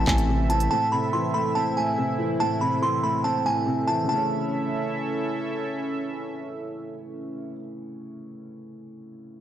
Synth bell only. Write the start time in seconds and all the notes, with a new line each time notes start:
0.07 G#5
0.50 A5
0.71 A5
0.92 B5
1.13 C6
1.34 B5
1.55 A5
1.77 G#5
2.40 A5
2.61 B5
2.83 C6
3.03 B5
3.24 A5
3.46 G#5
3.87 A5
4.09 A5